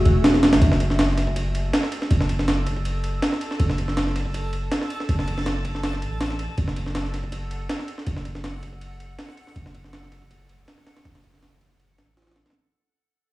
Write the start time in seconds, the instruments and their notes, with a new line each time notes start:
0.05 808-style bass E1, ride
0.24 snare, ride
0.34 snare
0.43 snare, ride
0.53 808-style bass A1, snare, ride
0.61 808-style bass F#1, synth texture A4 A5, kick, ride
0.72 snare
0.80 kick, ride
0.90 snare
0.99 snare, ride
1.09 snare
1.18 snare, ride
1.27 kick
1.36 kick, ride
1.55 ride
1.73 snare, ride
1.83 snare
1.92 ride
2.02 snare
2.11 808-style bass F#1, kick, ride
2.21 snare
2.29 kick, ride
2.39 snare
2.48 snare, ride
2.67 kick, ride
2.77 kick
2.85 ride
3.04 ride
3.22 snare, ride
3.32 snare
3.41 ride
3.51 snare
3.60 808-style bass F#1, kick, ride
3.70 snare
3.78 kick, ride
3.88 snare
3.97 snare, ride
4.07 snare
4.16 snare, ride
4.26 kick
4.34 kick, ride
4.53 ride
4.72 snare, ride
4.82 snare
4.90 ride
5.00 snare
5.09 808-style bass F#1, kick, ride
5.19 snare
5.28 kick, ride
5.38 snare
5.46 snare, ride
5.65 kick, ride
5.75 snare
5.83 snare, ride
5.93 snare
6.02 808-style bass A1, ride
6.21 snare, ride
6.31 snare
6.39 ride
6.58 808-style bass F#1, synth texture F#5, kick, ride
6.68 snare
6.76 kick, ride
6.86 snare
6.95 snare, ride
7.05 snare
7.14 snare, ride
7.24 kick
7.32 kick, ride
7.51 ride
7.69 snare, ride
7.79 snare
7.88 ride
7.98 snare
8.07 808-style bass F#1, kick, ride
8.17 snare
8.25 kick, ride
8.35 snare
8.44 snare, ride
8.63 kick, ride
8.73 kick
8.81 ride
9.00 ride
9.19 snare, ride
9.29 snare
9.37 ride
9.47 snare
9.56 808-style bass F#1, kick, ride
9.66 snare
9.75 kick, ride
9.84 snare
9.93 snare, ride
10.03 snare
10.12 snare, ride
10.22 kick
10.31 kick, ride
10.49 ride
10.68 snare, ride
10.78 snare
10.87 snare, ride
10.97 snare, ride
11.05 808-style bass F#1, snare, ride
11.15 snare, ride
11.24 kick, ride
11.34 snare
11.43 snare, ride
11.61 kick, ride
11.71 kick
11.80 ride
11.98 808-style bass A1, snare, ride
12.17 snare, ride
12.22 snare, ride
12.27 snare, ride
12.31 snare, ride
12.36 snare, ride
12.46 snare, ride
12.50 snare, ride